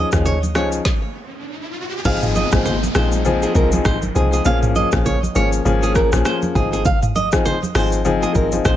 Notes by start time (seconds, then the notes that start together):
Already playing: riser
0.12 D#2 F3 C#4 D#4 G#4, kick, cross-stick, shaker
0.26 C#5, low conga, shaker
0.43 high conga, shaker
0.55 C#2 F3 C#4 D#4 G#4 C#5, cross-stick, shaker
0.72 shaker
0.85 kick, snare
2.05 G#1 F3 C4 D#4 G#4 F5, kick, crash, downlifter, low conga, shaker
2.22 mid tom, shaker
2.35 D#5, high conga, shaker
2.52 G#1 F3 C4 D#4 G#4, kick, cross-stick, shaker
2.65 C5, low conga, shaker
2.83 high conga, shaker
2.95 A#1 F3 C4 D#4 G#4 C5, cross-stick, shaker
3.12 shaker
3.25 F3 C4 D#4 G#4, low conga, shaker
3.42 G#4, shaker
3.55 C2 A#4, kick, shaker
3.72 F3 C4 D#4 G#4, high conga, shaker
3.85 G#1 C5, kick, cross-stick, shaker
4.02 high conga, shaker
4.15 C2 F3 C4 D#4 G#4, low conga, shaker
4.33 G#4, shaker
4.45 A#1 F3 A#3 C#4 G#4 F5, low conga, shaker
4.63 mid tom, shaker
4.76 D#5, high conga, shaker
4.92 A#1 F3 A#3 C#4 G#4, kick, cross-stick, shaker
5.06 C#5, low conga, shaker
5.23 high conga, shaker
5.35 G#1 F3 A#3 C#4 G#4 C#5, shaker
5.53 shaker
5.65 G#1 F3 A#3 C#4 G#4, low conga, shaker
5.83 G#4, shaker
5.95 A#4, kick, cross-stick, shaker
6.12 A#1 F3 A#3 C#4 G#4, cross-stick, high conga, shaker
6.25 C5, cross-stick, shaker
6.42 high conga, shaker
6.55 G#1 F3 C4 D#4 G#4, kick, low conga, shaker
6.73 G#4, shaker
6.85 F5, kick, low conga, shaker
7.03 mid tom, shaker
7.15 D#5, high conga, shaker
7.32 F3 C4 D#4 G#4, kick, cross-stick, shaker
7.45 C5, low conga, shaker
7.63 high conga, shaker
7.75 G#1 F3 C4 D#4 G#4 C5, cross-stick, open hi-hat, shaker
7.92 shaker
8.05 F3 C4 D#4 G#4, low conga, shaker
8.23 G#4, shaker
8.35 G#1 A#4, kick, shaker
8.52 F3 C4 D#4 G#4, high conga, shaker
8.65 A#1 C5, kick, cross-stick, shaker